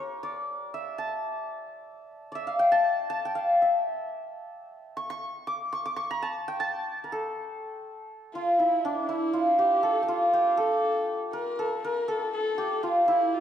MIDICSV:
0, 0, Header, 1, 3, 480
1, 0, Start_track
1, 0, Tempo, 500000
1, 804, Time_signature, 6, 3, 24, 8
1, 12865, End_track
2, 0, Start_track
2, 0, Title_t, "Santur"
2, 0, Program_c, 0, 15
2, 0, Note_on_c, 0, 67, 79
2, 0, Note_on_c, 0, 70, 75
2, 0, Note_on_c, 0, 73, 73
2, 221, Note_on_c, 0, 74, 82
2, 279, Note_off_c, 0, 73, 0
2, 709, Note_on_c, 0, 76, 88
2, 944, Note_on_c, 0, 81, 88
2, 1001, Note_off_c, 0, 70, 0
2, 1793, Note_off_c, 0, 67, 0
2, 2221, Note_off_c, 0, 74, 0
2, 2225, Note_on_c, 0, 74, 67
2, 2254, Note_off_c, 0, 76, 0
2, 2258, Note_on_c, 0, 76, 88
2, 2370, Note_on_c, 0, 77, 83
2, 2428, Note_off_c, 0, 76, 0
2, 2489, Note_on_c, 0, 79, 94
2, 2605, Note_off_c, 0, 81, 0
2, 2609, Note_on_c, 0, 81, 98
2, 2970, Note_off_c, 0, 81, 0
2, 2974, Note_on_c, 0, 81, 98
2, 3118, Note_off_c, 0, 79, 0
2, 3122, Note_on_c, 0, 79, 84
2, 3214, Note_off_c, 0, 77, 0
2, 3218, Note_on_c, 0, 77, 80
2, 3474, Note_on_c, 0, 76, 74
2, 3532, Note_off_c, 0, 77, 0
2, 4590, Note_off_c, 0, 74, 0
2, 4769, Note_on_c, 0, 85, 101
2, 4829, Note_off_c, 0, 81, 0
2, 4892, Note_off_c, 0, 85, 0
2, 4896, Note_on_c, 0, 85, 98
2, 5112, Note_off_c, 0, 79, 0
2, 5252, Note_on_c, 0, 86, 94
2, 5310, Note_off_c, 0, 85, 0
2, 5497, Note_on_c, 0, 85, 94
2, 5554, Note_off_c, 0, 86, 0
2, 5621, Note_on_c, 0, 86, 97
2, 5678, Note_off_c, 0, 76, 0
2, 5678, Note_off_c, 0, 85, 0
2, 5725, Note_on_c, 0, 85, 104
2, 5783, Note_off_c, 0, 86, 0
2, 5862, Note_on_c, 0, 82, 104
2, 5975, Note_on_c, 0, 81, 97
2, 6033, Note_off_c, 0, 82, 0
2, 6220, Note_on_c, 0, 79, 95
2, 6331, Note_off_c, 0, 81, 0
2, 6335, Note_on_c, 0, 81, 97
2, 6757, Note_on_c, 0, 70, 55
2, 6815, Note_off_c, 0, 81, 0
2, 6838, Note_on_c, 0, 69, 83
2, 6895, Note_off_c, 0, 70, 0
2, 7343, Note_off_c, 0, 85, 0
2, 8017, Note_on_c, 0, 65, 72
2, 8210, Note_off_c, 0, 79, 0
2, 8251, Note_on_c, 0, 64, 67
2, 8309, Note_off_c, 0, 65, 0
2, 8494, Note_on_c, 0, 62, 73
2, 8720, Note_off_c, 0, 64, 0
2, 8724, Note_on_c, 0, 64, 77
2, 8960, Note_on_c, 0, 65, 71
2, 9017, Note_off_c, 0, 64, 0
2, 9203, Note_on_c, 0, 67, 75
2, 9431, Note_off_c, 0, 69, 0
2, 9435, Note_on_c, 0, 69, 79
2, 9623, Note_off_c, 0, 67, 0
2, 9627, Note_on_c, 0, 67, 54
2, 9677, Note_off_c, 0, 65, 0
2, 9681, Note_on_c, 0, 65, 78
2, 9918, Note_off_c, 0, 67, 0
2, 9921, Note_on_c, 0, 67, 81
2, 10146, Note_off_c, 0, 69, 0
2, 10150, Note_on_c, 0, 69, 82
2, 10878, Note_on_c, 0, 70, 81
2, 10936, Note_off_c, 0, 69, 0
2, 11126, Note_on_c, 0, 69, 83
2, 11184, Note_off_c, 0, 70, 0
2, 11371, Note_on_c, 0, 70, 85
2, 11429, Note_off_c, 0, 69, 0
2, 11597, Note_on_c, 0, 69, 84
2, 11655, Note_off_c, 0, 70, 0
2, 12071, Note_off_c, 0, 67, 0
2, 12075, Note_on_c, 0, 67, 81
2, 12079, Note_off_c, 0, 62, 0
2, 12314, Note_off_c, 0, 65, 0
2, 12318, Note_on_c, 0, 65, 76
2, 12555, Note_on_c, 0, 64, 81
2, 12613, Note_off_c, 0, 65, 0
2, 12865, Note_off_c, 0, 64, 0
2, 12865, Note_off_c, 0, 67, 0
2, 12865, Note_off_c, 0, 69, 0
2, 12865, End_track
3, 0, Start_track
3, 0, Title_t, "Kamancheh"
3, 0, Program_c, 1, 110
3, 8003, Note_on_c, 1, 65, 68
3, 8241, Note_on_c, 1, 64, 64
3, 8256, Note_off_c, 1, 65, 0
3, 8487, Note_on_c, 1, 62, 60
3, 8502, Note_off_c, 1, 64, 0
3, 8708, Note_on_c, 1, 64, 71
3, 8723, Note_off_c, 1, 62, 0
3, 9200, Note_on_c, 1, 67, 70
3, 9214, Note_off_c, 1, 64, 0
3, 9450, Note_on_c, 1, 69, 71
3, 9464, Note_off_c, 1, 67, 0
3, 9619, Note_on_c, 1, 67, 53
3, 9633, Note_off_c, 1, 69, 0
3, 9680, Note_on_c, 1, 65, 75
3, 9695, Note_off_c, 1, 67, 0
3, 10176, Note_on_c, 1, 69, 73
3, 10191, Note_off_c, 1, 65, 0
3, 10710, Note_off_c, 1, 69, 0
3, 10882, Note_on_c, 1, 70, 78
3, 11329, Note_off_c, 1, 70, 0
3, 11356, Note_on_c, 1, 70, 79
3, 11620, Note_on_c, 1, 69, 72
3, 11634, Note_off_c, 1, 70, 0
3, 11836, Note_off_c, 1, 69, 0
3, 11842, Note_on_c, 1, 69, 83
3, 12323, Note_on_c, 1, 65, 70
3, 12337, Note_off_c, 1, 69, 0
3, 12559, Note_off_c, 1, 65, 0
3, 12565, Note_on_c, 1, 64, 74
3, 12810, Note_on_c, 1, 65, 69
3, 12825, Note_off_c, 1, 64, 0
3, 12865, Note_off_c, 1, 65, 0
3, 12865, End_track
0, 0, End_of_file